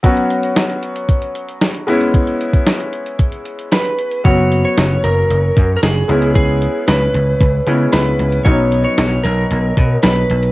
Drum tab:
HH |xxxxxxxxxxxxxxxx|xxxxxxxxxxxxxxxx|x-x-x-x-x-x-x-xx|x-x-x-x-x-x-x-xx|
SD |----o-------o---|----o-------o---|----o-------o---|----o-------o---|
BD |o-------o-------|o--o----o-------|o---------o-----|o-------o-------|

HH |x-x-x-x-x-x-x-xx|
SD |----o-------o---|
BD |o---------o-----|